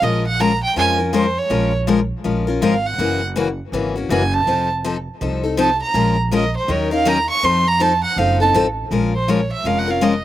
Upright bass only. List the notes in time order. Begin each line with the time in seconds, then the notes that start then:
0.02 A#1
0.77 F2
1.50 A#1
2.25 A#1
2.61 G#1
2.98 F#1
3.72 G#1
4.09 F#1
4.47 F1
5.21 C2
5.94 A#1
6.68 D#2
7.43 F2
8.16 F#1
8.53 A1
8.91 A#1
9.64 F1